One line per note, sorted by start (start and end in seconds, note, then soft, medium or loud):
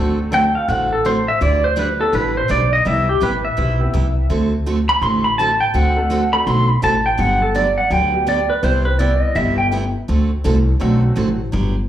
0.00 0.55 D2 medium
0.00 0.18 D3 medium
0.00 0.18 A3 medium
0.00 0.29 A3 medium
0.00 0.18 C4 medium
0.00 0.29 C4 medium
0.00 0.30 D4 medium
0.00 0.18 F#4 medium
0.00 0.30 F#4 medium
0.00 0.18 A4 medium
0.00 0.30 A4 medium
0.31 0.43 D3 medium
0.31 0.86 A3 medium
0.31 0.44 A3 medium
0.31 0.86 C4 medium
0.31 0.44 C4 medium
0.31 0.86 D4 medium
0.31 0.87 F#4 medium
0.31 0.44 F#4 medium
0.31 0.87 A4 medium
0.31 0.44 A4 medium
0.31 0.55 G5 medium
0.55 0.70 F5 medium
0.68 1.26 A1 medium
0.68 0.90 D3 medium
0.68 0.90 A3 medium
0.68 0.91 C4 medium
0.68 0.91 F#4 medium
0.68 0.91 A4 medium
0.68 0.91 F#5 medium
0.93 1.05 A4 soft
1.05 1.16 D3 medium
1.05 1.16 A3 medium
1.05 1.16 C4 medium
1.05 1.17 F#4 medium
1.05 1.17 A4 medium
1.05 1.28 C5 medium
1.28 1.41 E5 loud
1.41 1.99 D2 medium
1.41 1.62 D3 medium
1.41 1.63 G3 medium
1.41 1.63 D4 medium
1.41 1.63 E4 medium
1.41 1.63 B4 medium
1.41 1.64 D5 medium
1.64 1.77 C5 medium
1.76 1.88 D3 medium
1.76 1.88 G3 medium
1.76 1.88 D4 medium
1.76 1.88 E4 medium
1.76 1.88 B4 medium
1.76 2.00 B4 medium
1.99 2.46 B3 medium
1.99 2.47 D4 medium
1.99 2.47 E4 medium
1.99 2.47 G4 medium
1.99 2.13 A4 medium
1.99 2.47 B4 medium
2.12 2.44 A1 medium
2.12 2.34 D3 soft
2.12 2.35 G3 medium
2.12 2.35 D4 medium
2.12 2.35 E4 medium
2.12 2.35 B4 medium
2.12 2.36 B4 medium
2.37 2.49 C5 medium
2.48 2.80 B1 medium
2.48 2.60 D3 medium
2.48 2.60 G3 medium
2.48 2.61 D4 medium
2.48 2.61 E4 medium
2.48 2.61 B4 medium
2.48 2.72 D5 medium
2.73 2.85 D#5 medium
2.85 3.15 C2 medium
2.85 3.07 C3 medium
2.85 3.07 G3 medium
2.85 3.07 B3 medium
2.85 3.07 E4 medium
2.85 3.07 G4 medium
2.85 3.08 E5 medium
3.09 3.21 G4 medium
3.21 3.52 A1 medium
3.21 3.32 C3 medium
3.21 3.33 G3 medium
3.21 3.33 B3 medium
3.21 3.33 E4 medium
3.21 3.33 G4 medium
3.21 3.45 B4 medium
3.45 4.26 E5 medium
3.57 3.88 B1 medium
3.57 3.79 C3 medium
3.57 3.79 G3 medium
3.57 3.79 B3 medium
3.57 3.79 E4 medium
3.57 3.79 G4 medium
3.80 3.92 B3 medium
3.80 3.92 C4 medium
3.80 3.93 E4 medium
3.80 3.93 G4 medium
3.80 3.93 B4 medium
3.93 4.24 C2 medium
3.93 4.05 C3 medium
3.93 4.05 G3 medium
3.93 4.05 B3 medium
3.93 4.06 E4 medium
3.93 4.06 G4 medium
4.30 4.88 D2 medium
4.30 4.51 D3 medium
4.30 4.52 A3 medium
4.30 4.52 C4 medium
4.30 4.52 F#4 medium
4.30 4.52 A4 medium
4.66 4.78 D3 medium
4.66 4.78 A3 medium
4.66 4.78 C4 medium
4.66 4.78 F#4 medium
4.66 4.78 A4 medium
4.89 5.02 B5 medium
5.01 5.60 A1 medium
5.01 5.24 D3 medium
5.01 5.24 A3 medium
5.01 5.24 C4 medium
5.01 5.24 F#4 medium
5.01 5.24 A4 medium
5.01 5.24 C6 loud
5.24 5.37 B5 medium
5.38 5.50 D3 medium
5.38 5.50 A3 medium
5.38 5.50 C4 medium
5.38 5.51 F#4 medium
5.38 5.51 A4 medium
5.38 5.61 A5 medium
5.61 5.74 G5 medium
5.74 6.32 D2 medium
5.74 5.96 D3 medium
5.74 5.96 A3 medium
5.74 5.96 C4 medium
5.74 5.96 F#4 medium
5.74 5.97 A4 medium
5.74 6.30 F#5 medium
5.96 6.31 A3 medium
5.96 6.31 C4 medium
5.96 6.31 D4 medium
5.96 6.31 F#4 medium
5.96 6.31 A4 medium
6.10 6.22 D3 medium
6.10 6.22 A3 medium
6.10 6.22 C4 medium
6.10 6.22 F#4 medium
6.10 6.22 A4 medium
6.32 6.45 A3 medium
6.32 6.45 C4 medium
6.32 6.45 D4 medium
6.32 6.45 F#4 medium
6.32 6.45 A4 medium
6.32 6.46 B5 medium
6.47 6.77 B1 medium
6.47 6.68 D3 medium
6.47 6.69 A3 medium
6.47 6.69 C4 medium
6.47 6.69 F#4 medium
6.47 6.69 A4 medium
6.47 6.69 C6 loud
6.69 6.82 B5 medium
6.82 7.14 A1 medium
6.82 6.94 D3 medium
6.82 6.94 A3 medium
6.82 6.94 C4 medium
6.82 6.95 F#4 medium
6.82 6.95 A4 medium
6.82 7.06 A5 medium
7.06 7.19 G5 medium
7.18 7.77 G1 medium
7.18 7.40 D3 medium
7.18 7.40 F#3 medium
7.18 7.40 B3 medium
7.18 7.40 D4 medium
7.18 7.40 G4 medium
7.18 7.42 F#5 medium
7.42 7.55 A4 medium
7.54 7.66 D3 medium
7.54 7.66 F#3 medium
7.54 7.67 B3 medium
7.54 7.67 D4 medium
7.54 7.67 G4 medium
7.54 7.78 D5 medium
7.78 7.91 F#5 medium
7.90 8.49 D2 medium
7.90 8.12 D3 medium
7.90 8.13 F#3 medium
7.90 8.13 B3 medium
7.90 8.13 D4 medium
7.90 8.13 G4 medium
7.90 8.26 G5 loud
8.13 8.26 G3 medium
8.13 8.26 B3 medium
8.13 8.26 D4 medium
8.13 8.26 F#4 medium
8.13 8.26 G4 medium
8.27 8.38 D3 medium
8.27 8.39 F#3 medium
8.27 8.39 B3 medium
8.27 8.39 D4 medium
8.27 8.39 G4 medium
8.27 8.50 D5 medium
8.50 8.63 B4 medium
8.63 9.21 C2 medium
8.63 8.85 C3 medium
8.63 8.85 G3 medium
8.63 8.85 B3 medium
8.63 8.85 E4 medium
8.63 8.85 G4 medium
8.63 8.85 C5 medium
8.85 8.99 B4 medium
8.99 9.11 C3 medium
8.99 9.54 G3 medium
8.99 9.11 G3 medium
8.99 9.54 B3 medium
8.99 9.11 B3 medium
8.99 9.54 C4 medium
8.99 9.54 E4 medium
8.99 9.11 E4 medium
8.99 9.54 G4 medium
8.99 9.11 G4 medium
8.99 9.21 D5 medium
9.21 9.35 D#5 loud
9.35 9.93 G1 medium
9.35 9.57 C3 medium
9.35 9.57 G3 medium
9.35 9.58 B3 medium
9.35 9.58 E4 medium
9.35 9.58 G4 medium
9.35 9.57 E5 medium
9.58 9.66 G5 loud
9.72 9.83 C3 medium
9.72 9.84 G3 medium
9.72 9.84 B3 medium
9.72 9.84 E4 medium
9.72 9.84 G4 medium
10.08 10.37 D2 medium
10.08 10.30 D3 medium
10.08 10.30 A3 medium
10.08 10.30 C4 medium
10.08 10.30 F#4 medium
10.08 10.30 A4 medium
10.44 10.75 C2 medium
10.44 10.56 D3 medium
10.44 10.56 A3 medium
10.44 10.56 C4 medium
10.44 10.56 F#4 medium
10.44 10.56 A4 medium
10.80 11.12 B1 medium
10.80 11.02 D3 medium
10.80 11.35 F#3 medium
10.80 11.02 A3 medium
10.80 11.35 A3 medium
10.80 11.02 C4 medium
10.80 11.35 C4 medium
10.80 11.35 D4 medium
10.80 11.02 F#4 medium
10.80 11.36 F#4 medium
10.80 11.03 A4 medium
11.16 11.48 A1 medium
11.16 11.28 D3 medium
11.16 11.28 A3 medium
11.16 11.28 C4 medium
11.16 11.28 F#4 medium
11.16 11.28 A4 medium
11.52 11.89 G1 medium
11.52 11.74 D3 medium
11.52 11.74 F#3 medium
11.52 11.74 B3 medium
11.52 11.75 D4 medium
11.52 11.75 G4 medium